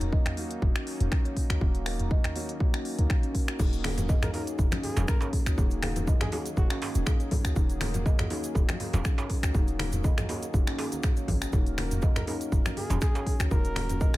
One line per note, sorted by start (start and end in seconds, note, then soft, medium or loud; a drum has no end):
0.00 0.19 D#1 loud
0.00 14.17 D#3 medium
0.00 14.17 F#3 medium
0.00 0.35 A#3 medium
0.00 14.17 A#3 medium
0.00 0.35 C#4 medium
0.00 14.17 C#4 medium
0.00 0.35 D#4 medium
0.00 3.58 D#4 medium
0.00 0.35 F#4 loud
0.00 closed hi-hat medium
0.00 mid tom loud
0.13 0.25 D#5 medium
0.13 kick loud
0.26 finger snap medium
0.26 closed hi-hat soft
0.26 mid tom medium
0.37 1.59 A#3 medium
0.37 1.59 C#4 medium
0.37 1.59 D#4 medium
0.37 0.50 D#4 medium
0.37 1.59 F#4 medium
0.37 open hi-hat medium
0.51 closed hi-hat medium
0.62 0.71 D#1 medium
0.62 0.70 F#4 medium
0.62 kick loud
0.76 0.86 C#4 medium
0.76 finger snap medium
0.76 closed hi-hat soft
0.87 open hi-hat medium
1.00 1.08 D#1 loud
1.00 1.11 F#4 medium
1.00 closed hi-hat medium
1.00 mid tom loud
1.12 finger snap medium
1.12 kick loud
1.25 1.35 C#5 medium
1.25 closed hi-hat soft
1.36 kick medium
1.36 open hi-hat medium
1.50 1.58 C#2 medium
1.50 1.60 F#4 medium
1.50 finger snap medium
1.50 closed hi-hat medium
1.61 2.17 D#1 loud
1.61 2.33 A#3 medium
1.61 2.33 C#4 medium
1.61 2.33 D#4 medium
1.61 1.69 D#4 medium
1.61 2.33 F#4 loud
1.61 kick loud
1.75 closed hi-hat soft
1.86 1.99 A#4 loud
1.86 finger snap medium
1.86 open hi-hat medium
2.00 closed hi-hat medium
2.00 mid tom loud
2.11 2.23 D#5 medium
2.11 kick loud
2.24 finger snap medium
2.24 closed hi-hat soft
2.24 mid tom medium
2.36 2.49 A#3 medium
2.36 2.49 C#4 medium
2.36 2.49 D#4 medium
2.36 2.48 D#4 medium
2.36 2.49 F#4 loud
2.36 open hi-hat medium
2.49 closed hi-hat medium
2.60 3.57 A#3 medium
2.60 3.57 C#4 medium
2.60 3.57 D#4 medium
2.60 3.57 F#4 loud
2.60 2.68 F#4 medium
2.60 kick loud
2.74 2.84 C#4 medium
2.74 finger snap medium
2.74 closed hi-hat soft
2.85 open hi-hat medium
2.99 3.06 C#2 medium
2.99 3.09 A#4 medium
2.99 closed hi-hat medium
3.10 finger snap medium
3.10 kick loud
3.23 3.34 C#4 medium
3.23 closed hi-hat soft
3.35 kick medium
3.35 open hi-hat medium
3.48 3.59 F#4 medium
3.48 finger snap medium
3.48 closed hi-hat medium
3.59 4.16 D#1 loud
3.59 4.31 A#3 medium
3.59 4.31 C#4 medium
3.59 4.31 D#4 medium
3.59 4.31 F#4 loud
3.59 11.52 G#4 medium
3.59 kick loud
3.59 crash medium
3.59 djembe tone medium
3.59 high conga medium
3.59 shaker medium
3.73 closed hi-hat soft
3.73 shaker soft
3.84 3.97 A#4 loud
3.84 finger snap medium
3.84 open hi-hat loud
3.84 djembe tone medium
3.84 high conga loud
3.98 closed hi-hat medium
3.98 mid tom medium
3.98 low conga medium
3.98 shaker medium
4.09 4.21 D#5 medium
4.09 kick loud
4.09 high conga loud
4.09 djembe tone loud
4.09 shaker medium
4.22 4.30 A#4 medium
4.22 finger snap medium
4.22 closed hi-hat soft
4.22 mid tom medium
4.22 low conga loud
4.22 djembe bass loud
4.22 shaker soft
4.34 5.55 A#3 medium
4.34 5.55 C#4 medium
4.34 4.46 D#4 medium
4.34 5.55 D#4 medium
4.34 5.55 F#4 medium
4.34 4.43 A#4 medium
4.34 open hi-hat medium
4.34 djembe slap medium
4.34 djembe tone medium
4.47 closed hi-hat medium
4.47 shaker medium
4.58 4.68 D#1 medium
4.58 4.66 F#4 medium
4.58 kick loud
4.58 djembe tone medium
4.58 shaker medium
4.72 4.82 C#4 medium
4.72 finger snap medium
4.72 closed hi-hat soft
4.72 low conga loud
4.72 shaker soft
4.83 5.06 G#4 medium
4.83 open hi-hat medium
4.83 high conga medium
4.83 djembe tone medium
4.97 5.05 D#1 loud
4.97 5.07 C#4 medium
4.97 closed hi-hat medium
4.97 mid tom medium
4.97 djembe slap loud
4.97 low conga loud
4.97 shaker medium
5.08 5.17 A#4 medium
5.08 finger snap medium
5.08 kick loud
5.08 djembe tone medium
5.08 shaker medium
5.21 5.29 A#4 medium
5.21 5.32 C#5 medium
5.21 closed hi-hat soft
5.21 djembe slap loud
5.21 shaker soft
5.33 kick medium
5.33 open hi-hat medium
5.33 djembe tone medium
5.46 5.54 C#2 medium
5.46 5.57 F#4 medium
5.46 finger snap medium
5.46 closed hi-hat medium
5.46 shaker medium
5.58 6.14 D#1 loud
5.58 6.30 A#3 medium
5.58 6.30 C#4 medium
5.58 5.65 D#4 medium
5.58 6.30 D#4 medium
5.58 6.30 F#4 loud
5.58 kick loud
5.58 high conga medium
5.58 djembe tone loud
5.58 shaker medium
5.70 closed hi-hat soft
5.70 shaker soft
5.82 5.96 A#4 loud
5.82 finger snap loud
5.82 open hi-hat medium
5.82 high conga loud
5.82 djembe tone medium
5.96 closed hi-hat medium
5.96 mid tom medium
5.96 low conga medium
5.96 shaker medium
6.07 6.20 D#5 medium
6.07 kick loud
6.07 high conga loud
6.07 djembe tone medium
6.07 shaker medium
6.21 6.28 G#4 medium
6.21 finger snap medium
6.21 closed hi-hat soft
6.21 mid tom medium
6.21 low conga loud
6.21 djembe bass loud
6.21 shaker soft
6.32 6.46 A#3 medium
6.32 6.46 C#4 medium
6.32 6.46 D#4 medium
6.32 6.44 D#4 medium
6.32 6.46 F#4 loud
6.32 6.41 G#4 medium
6.32 open hi-hat medium
6.32 djembe slap medium
6.32 djembe tone loud
6.46 closed hi-hat medium
6.46 shaker medium
6.57 6.66 D#1 medium
6.57 7.54 A#3 medium
6.57 7.54 C#4 medium
6.57 7.54 D#4 medium
6.57 7.54 F#4 loud
6.57 6.64 F#4 medium
6.57 6.66 F#4 medium
6.57 kick loud
6.57 djembe tone medium
6.57 djembe bass loud
6.57 shaker medium
6.70 6.81 C#4 medium
6.70 6.78 F#4 medium
6.70 finger snap loud
6.70 closed hi-hat soft
6.70 djembe slap medium
6.70 shaker soft
6.82 open hi-hat loud
6.82 djembe slap loud
6.82 djembe tone medium
6.95 7.03 D#1 loud
6.95 7.06 C#4 medium
6.95 closed hi-hat medium
6.95 high conga medium
6.95 shaker medium
7.06 finger snap medium
7.06 kick loud
7.06 djembe tone loud
7.06 shaker medium
7.20 7.30 C#5 medium
7.20 closed hi-hat soft
7.20 shaker soft
7.31 kick medium
7.31 open hi-hat medium
7.31 djembe tone medium
7.31 low conga loud
7.45 7.53 C#2 medium
7.45 7.55 F#4 medium
7.45 finger snap medium
7.45 closed hi-hat medium
7.45 shaker medium
7.56 8.12 D#1 loud
7.56 8.28 A#3 medium
7.56 8.28 C#4 medium
7.56 8.28 D#4 medium
7.56 7.64 D#4 medium
7.56 8.28 F#4 loud
7.56 kick loud
7.56 high conga medium
7.56 djembe tone medium
7.56 shaker medium
7.70 closed hi-hat soft
7.70 shaker soft
7.81 7.94 A#4 loud
7.81 finger snap loud
7.81 open hi-hat medium
7.81 high conga loud
7.81 djembe tone loud
7.94 closed hi-hat medium
7.94 mid tom medium
7.94 low conga medium
7.94 shaker medium
8.06 8.18 D#5 medium
8.06 kick loud
8.06 djembe tone loud
8.06 high conga loud
8.06 shaker medium
8.19 finger snap medium
8.19 closed hi-hat soft
8.19 mid tom medium
8.19 low conga loud
8.19 djembe bass loud
8.19 shaker soft
8.30 9.52 A#3 medium
8.30 9.52 C#4 medium
8.30 9.52 D#4 medium
8.30 8.43 D#4 medium
8.30 9.52 F#4 medium
8.30 open hi-hat medium
8.30 djembe slap medium
8.30 djembe tone medium
8.44 closed hi-hat medium
8.44 shaker medium
8.55 8.65 D#1 medium
8.55 kick loud
8.55 djembe tone loud
8.55 shaker medium
8.69 8.79 C#4 medium
8.69 finger snap loud
8.69 closed hi-hat soft
8.69 low conga loud
8.69 shaker soft
8.80 open hi-hat medium
8.80 djembe tone loud
8.80 high conga medium
8.93 9.01 D#1 loud
8.93 9.04 C#4 medium
8.93 closed hi-hat medium
8.93 mid tom medium
8.93 djembe slap loud
8.93 low conga loud
8.93 shaker medium
9.05 finger snap medium
9.05 kick loud
9.05 djembe tone medium
9.05 shaker medium
9.18 9.29 C#5 medium
9.18 closed hi-hat soft
9.18 djembe slap loud
9.18 shaker soft
9.30 kick medium
9.30 open hi-hat medium
9.30 djembe tone medium
9.43 9.51 C#2 medium
9.43 9.53 F#4 medium
9.43 finger snap loud
9.43 closed hi-hat medium
9.43 shaker medium
9.55 10.11 D#1 loud
9.55 10.26 A#3 medium
9.55 10.26 C#4 medium
9.55 10.26 D#4 medium
9.55 10.26 F#4 loud
9.55 kick loud
9.55 high conga medium
9.55 djembe tone medium
9.55 shaker medium
9.68 closed hi-hat soft
9.68 shaker soft
9.79 9.92 A#4 loud
9.79 finger snap loud
9.79 open hi-hat medium
9.79 high conga loud
9.79 djembe tone medium
9.92 closed hi-hat medium
9.92 mid tom medium
9.92 low conga medium
9.92 shaker medium
10.04 10.16 D#5 medium
10.04 kick loud
10.04 djembe tone loud
10.04 high conga loud
10.04 shaker medium
10.18 finger snap medium
10.18 closed hi-hat soft
10.18 mid tom medium
10.18 low conga loud
10.18 djembe bass loud
10.18 shaker soft
10.29 10.42 A#3 medium
10.29 10.42 C#4 medium
10.29 10.42 D#4 medium
10.29 10.41 D#4 medium
10.29 10.42 F#4 loud
10.29 open hi-hat medium
10.29 djembe slap medium
10.29 djembe tone loud
10.42 closed hi-hat medium
10.42 shaker medium
10.54 10.63 D#1 medium
10.54 11.50 A#3 medium
10.54 11.50 C#4 medium
10.54 11.50 D#4 medium
10.54 11.50 F#4 loud
10.54 10.61 F#4 medium
10.54 kick loud
10.54 djembe tone medium
10.54 djembe bass medium
10.54 shaker medium
10.67 10.78 C#4 medium
10.67 finger snap loud
10.67 closed hi-hat soft
10.67 djembe slap medium
10.67 shaker soft
10.78 open hi-hat medium
10.78 djembe slap loud
10.78 djembe tone loud
10.92 11.02 C#4 medium
10.92 closed hi-hat medium
10.92 high conga medium
10.92 shaker medium
11.03 finger snap medium
11.03 kick loud
11.03 djembe tone medium
11.03 shaker medium
11.17 11.27 C#5 medium
11.17 closed hi-hat soft
11.17 shaker soft
11.28 11.46 G#1 loud
11.28 kick medium
11.28 open hi-hat medium
11.28 djembe tone medium
11.28 low conga loud
11.42 11.52 F#4 medium
11.42 finger snap medium
11.42 closed hi-hat medium
11.42 shaker medium
11.53 12.09 D#1 loud
11.53 12.25 A#3 medium
11.53 12.25 C#4 medium
11.53 12.25 D#4 medium
11.53 12.25 F#4 loud
11.53 14.17 A#4 medium
11.53 kick loud
11.53 high conga medium
11.53 djembe tone medium
11.53 shaker medium
11.67 closed hi-hat soft
11.67 shaker soft
11.78 11.91 A#4 loud
11.78 finger snap medium
11.78 open hi-hat medium
11.78 djembe tone medium
11.78 high conga loud
11.91 closed hi-hat medium
11.91 mid tom loud
11.91 low conga medium
11.91 shaker medium
12.02 12.15 D#5 medium
12.02 kick loud
12.02 high conga loud
12.02 djembe tone medium
12.02 shaker medium
12.16 12.23 A#4 medium
12.16 finger snap medium
12.16 closed hi-hat soft
12.16 mid tom medium
12.16 djembe bass medium
12.16 low conga medium
12.16 shaker soft
12.27 13.49 A#3 medium
12.27 13.49 C#4 medium
12.27 12.40 D#4 medium
12.27 13.49 D#4 medium
12.27 13.49 F#4 medium
12.27 12.36 A#4 medium
12.27 open hi-hat medium
12.27 djembe slap medium
12.27 djembe tone loud
12.41 closed hi-hat medium
12.41 shaker medium
12.52 12.61 D#1 medium
12.52 12.59 F#4 medium
12.52 kick loud
12.52 djembe tone medium
12.52 shaker medium
12.66 12.76 C#4 medium
12.66 finger snap medium
12.66 closed hi-hat soft
12.66 low conga medium
12.66 shaker soft
12.77 13.00 G#4 medium
12.77 open hi-hat medium
12.77 high conga medium
12.77 djembe tone medium
12.90 12.98 D#1 loud
12.90 13.01 C#4 medium
12.90 closed hi-hat medium
12.90 mid tom medium
12.90 djembe slap loud
12.90 low conga loud
12.90 shaker medium
13.01 13.40 G#4 medium
13.01 finger snap medium
13.01 kick loud
13.01 djembe tone loud
13.01 shaker medium
13.15 13.25 C#5 medium
13.15 closed hi-hat soft
13.15 djembe slap loud
13.15 shaker soft
13.26 kick medium
13.26 open hi-hat medium
13.26 djembe tone medium
13.40 13.48 C#2 medium
13.40 13.50 F#4 medium
13.40 finger snap medium
13.40 closed hi-hat medium
13.40 shaker medium
13.51 14.07 D#1 loud
13.51 14.17 A#3 medium
13.51 14.17 C#4 medium
13.51 14.17 D#4 medium
13.51 13.59 D#4 medium
13.51 14.17 F#4 loud
13.51 14.17 A#4 loud
13.51 kick loud
13.51 djembe tone medium
13.51 high conga loud
13.51 shaker medium
13.65 closed hi-hat soft
13.65 shaker soft
13.75 13.89 A#4 loud
13.75 finger snap medium
13.75 open hi-hat medium
13.75 djembe tone medium
13.75 high conga loud
13.90 closed hi-hat medium
13.90 mid tom loud
13.90 low conga medium
13.90 shaker medium
14.01 14.13 D#5 medium
14.01 kick loud
14.01 high conga loud
14.01 djembe tone medium
14.01 shaker medium
14.13 low conga medium